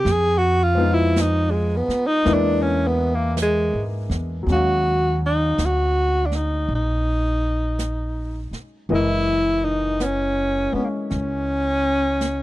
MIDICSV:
0, 0, Header, 1, 6, 480
1, 0, Start_track
1, 0, Key_signature, -6, "minor"
1, 0, Tempo, 1104972
1, 24, Time_signature, 4, 2, 24, 8
1, 5398, End_track
2, 0, Start_track
2, 0, Title_t, "Tenor saxophone"
2, 0, Program_c, 0, 66
2, 0, Note_on_c, 0, 67, 84
2, 52, Note_on_c, 0, 68, 99
2, 59, Note_off_c, 0, 67, 0
2, 166, Note_on_c, 0, 66, 82
2, 172, Note_off_c, 0, 68, 0
2, 275, Note_on_c, 0, 65, 96
2, 282, Note_off_c, 0, 66, 0
2, 407, Note_on_c, 0, 64, 88
2, 413, Note_off_c, 0, 65, 0
2, 528, Note_on_c, 0, 63, 86
2, 534, Note_off_c, 0, 64, 0
2, 655, Note_on_c, 0, 56, 68
2, 662, Note_off_c, 0, 63, 0
2, 768, Note_on_c, 0, 59, 86
2, 774, Note_off_c, 0, 56, 0
2, 899, Note_on_c, 0, 63, 101
2, 906, Note_off_c, 0, 59, 0
2, 1017, Note_on_c, 0, 62, 89
2, 1023, Note_off_c, 0, 63, 0
2, 1138, Note_on_c, 0, 61, 84
2, 1145, Note_off_c, 0, 62, 0
2, 1248, Note_on_c, 0, 59, 90
2, 1254, Note_off_c, 0, 61, 0
2, 1368, Note_on_c, 0, 58, 77
2, 1374, Note_off_c, 0, 59, 0
2, 1457, Note_off_c, 0, 58, 0
2, 1487, Note_on_c, 0, 56, 96
2, 1669, Note_off_c, 0, 56, 0
2, 1964, Note_on_c, 0, 66, 87
2, 2252, Note_off_c, 0, 66, 0
2, 2286, Note_on_c, 0, 63, 81
2, 2455, Note_on_c, 0, 66, 92
2, 2462, Note_off_c, 0, 63, 0
2, 2720, Note_on_c, 0, 62, 55
2, 2727, Note_off_c, 0, 66, 0
2, 2763, Note_on_c, 0, 63, 73
2, 2769, Note_off_c, 0, 62, 0
2, 2917, Note_off_c, 0, 63, 0
2, 2933, Note_on_c, 0, 63, 78
2, 3697, Note_off_c, 0, 63, 0
2, 3888, Note_on_c, 0, 64, 90
2, 4190, Note_on_c, 0, 63, 86
2, 4196, Note_off_c, 0, 64, 0
2, 4346, Note_on_c, 0, 59, 62
2, 4353, Note_off_c, 0, 63, 0
2, 4357, Note_on_c, 0, 61, 91
2, 4363, Note_off_c, 0, 59, 0
2, 4664, Note_on_c, 0, 59, 71
2, 4670, Note_off_c, 0, 61, 0
2, 4712, Note_on_c, 0, 58, 45
2, 4718, Note_off_c, 0, 59, 0
2, 4720, Note_off_c, 0, 58, 0
2, 4825, Note_on_c, 0, 61, 90
2, 5398, Note_off_c, 0, 61, 0
2, 5398, End_track
3, 0, Start_track
3, 0, Title_t, "Grand piano"
3, 0, Program_c, 1, 0
3, 0, Control_c, 1, 64, 127
3, 31, Control_c, 1, 64, 0
3, 110, Control_c, 1, 64, 127
3, 325, Note_on_c, 1, 53, 59
3, 331, Note_on_c, 1, 56, 51
3, 338, Note_on_c, 1, 59, 48
3, 342, Note_on_c, 1, 63, 52
3, 348, Note_on_c, 1, 65, 64
3, 970, Note_off_c, 1, 56, 0
3, 976, Note_off_c, 1, 53, 0
3, 976, Note_off_c, 1, 59, 0
3, 977, Note_on_c, 1, 56, 63
3, 980, Note_on_c, 1, 58, 58
3, 982, Note_on_c, 1, 62, 58
3, 983, Note_on_c, 1, 59, 54
3, 984, Note_off_c, 1, 63, 0
3, 985, Note_on_c, 1, 64, 68
3, 987, Note_off_c, 1, 65, 0
3, 987, Control_c, 1, 64, 0
3, 1062, Control_c, 1, 64, 127
3, 1924, Note_on_c, 1, 54, 44
3, 1933, Note_off_c, 1, 56, 0
3, 1939, Note_on_c, 1, 56, 36
3, 1943, Note_off_c, 1, 58, 0
3, 1944, Note_off_c, 1, 59, 0
3, 1944, Note_off_c, 1, 62, 0
3, 1945, Note_off_c, 1, 64, 0
3, 1949, Control_c, 1, 64, 0
3, 1954, Note_on_c, 1, 61, 42
3, 1970, Note_on_c, 1, 77, 47
3, 2023, Control_c, 1, 64, 127
3, 3855, Note_off_c, 1, 54, 0
3, 3861, Note_off_c, 1, 56, 0
3, 3866, Note_on_c, 1, 52, 55
3, 3868, Note_on_c, 1, 56, 49
3, 3871, Note_off_c, 1, 61, 0
3, 3872, Control_c, 1, 64, 0
3, 3873, Note_on_c, 1, 70, 47
3, 3875, Note_on_c, 1, 75, 57
3, 3879, Note_off_c, 1, 77, 0
3, 3950, Control_c, 1, 64, 127
3, 4650, Note_off_c, 1, 56, 0
3, 4657, Note_on_c, 1, 56, 38
3, 4674, Note_on_c, 1, 61, 46
3, 5398, Note_off_c, 1, 52, 0
3, 5398, Note_off_c, 1, 56, 0
3, 5398, Note_off_c, 1, 61, 0
3, 5398, Note_off_c, 1, 70, 0
3, 5398, Note_off_c, 1, 75, 0
3, 5398, End_track
4, 0, Start_track
4, 0, Title_t, "Upright bass"
4, 0, Program_c, 2, 32
4, 22, Note_on_c, 2, 41, 83
4, 798, Note_off_c, 2, 41, 0
4, 980, Note_on_c, 2, 40, 89
4, 1605, Note_off_c, 2, 40, 0
4, 1622, Note_on_c, 2, 44, 64
4, 1772, Note_off_c, 2, 44, 0
4, 1779, Note_on_c, 2, 40, 70
4, 1930, Note_off_c, 2, 40, 0
4, 1939, Note_on_c, 2, 39, 72
4, 2405, Note_off_c, 2, 39, 0
4, 2423, Note_on_c, 2, 38, 70
4, 2887, Note_off_c, 2, 38, 0
4, 2904, Note_on_c, 2, 34, 69
4, 3683, Note_off_c, 2, 34, 0
4, 3862, Note_on_c, 2, 30, 68
4, 4641, Note_off_c, 2, 30, 0
4, 4828, Note_on_c, 2, 37, 73
4, 5398, Note_off_c, 2, 37, 0
4, 5398, End_track
5, 0, Start_track
5, 0, Title_t, "Muted upright bass strokes"
5, 816, Note_on_c, 9, 29, 46
5, 859, Note_off_c, 9, 29, 0
5, 3698, Note_on_c, 9, 29, 36
5, 3742, Note_off_c, 9, 29, 0
5, 4662, Note_on_c, 9, 29, 36
5, 4706, Note_off_c, 9, 29, 0
5, 5398, End_track
6, 0, Start_track
6, 0, Title_t, "Drums"
6, 25, Note_on_c, 9, 25, 35
6, 25, Note_on_c, 9, 38, 32
6, 69, Note_off_c, 9, 38, 0
6, 505, Note_off_c, 9, 25, 0
6, 505, Note_on_c, 9, 25, 32
6, 505, Note_on_c, 9, 38, 53
6, 505, Note_on_c, 9, 44, 57
6, 549, Note_off_c, 9, 38, 0
6, 549, Note_off_c, 9, 44, 0
6, 823, Note_on_c, 9, 38, 29
6, 867, Note_off_c, 9, 38, 0
6, 982, Note_off_c, 9, 25, 0
6, 982, Note_on_c, 9, 25, 40
6, 982, Note_on_c, 9, 38, 32
6, 1026, Note_off_c, 9, 38, 0
6, 1463, Note_off_c, 9, 25, 0
6, 1463, Note_on_c, 9, 25, 41
6, 1463, Note_on_c, 9, 38, 53
6, 1463, Note_on_c, 9, 44, 58
6, 1507, Note_off_c, 9, 38, 0
6, 1507, Note_off_c, 9, 44, 0
6, 1784, Note_on_c, 9, 38, 31
6, 1828, Note_off_c, 9, 38, 0
6, 1947, Note_off_c, 9, 25, 0
6, 1947, Note_on_c, 9, 25, 29
6, 1947, Note_on_c, 9, 38, 27
6, 1990, Note_off_c, 9, 38, 0
6, 2425, Note_off_c, 9, 25, 0
6, 2425, Note_on_c, 9, 25, 36
6, 2425, Note_on_c, 9, 38, 41
6, 2425, Note_on_c, 9, 44, 44
6, 2469, Note_off_c, 9, 38, 0
6, 2469, Note_off_c, 9, 44, 0
6, 2744, Note_on_c, 9, 38, 25
6, 2787, Note_off_c, 9, 38, 0
6, 2905, Note_off_c, 9, 25, 0
6, 2905, Note_on_c, 9, 25, 28
6, 3383, Note_off_c, 9, 25, 0
6, 3383, Note_on_c, 9, 25, 30
6, 3383, Note_on_c, 9, 38, 42
6, 3383, Note_on_c, 9, 44, 51
6, 3427, Note_off_c, 9, 38, 0
6, 3427, Note_off_c, 9, 44, 0
6, 3705, Note_on_c, 9, 38, 25
6, 3749, Note_off_c, 9, 38, 0
6, 3866, Note_off_c, 9, 25, 0
6, 3866, Note_on_c, 9, 25, 28
6, 4345, Note_off_c, 9, 25, 0
6, 4345, Note_on_c, 9, 25, 28
6, 4345, Note_on_c, 9, 38, 40
6, 4345, Note_on_c, 9, 44, 43
6, 4388, Note_off_c, 9, 38, 0
6, 4388, Note_off_c, 9, 44, 0
6, 4824, Note_off_c, 9, 25, 0
6, 4824, Note_on_c, 9, 25, 36
6, 4824, Note_on_c, 9, 38, 24
6, 4868, Note_off_c, 9, 38, 0
6, 5303, Note_off_c, 9, 25, 0
6, 5303, Note_on_c, 9, 25, 36
6, 5303, Note_on_c, 9, 38, 41
6, 5303, Note_on_c, 9, 44, 46
6, 5347, Note_off_c, 9, 38, 0
6, 5347, Note_off_c, 9, 44, 0
6, 5398, Note_off_c, 9, 25, 0
6, 5398, End_track
0, 0, End_of_file